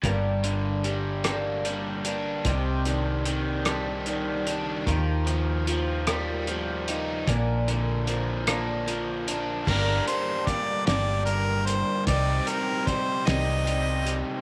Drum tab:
CC |------|------|------|------|
HH |xxxxxx|xxxxxx|xxxxxx|xxxxxx|
SD |---r--|---r--|---r--|---r--|
BD |o-----|o-----|o-----|o-----|

CC |x-----|------|
HH |-xxxxx|xxxxxx|
SD |---o--|---o--|
BD |o-o---|o-o---|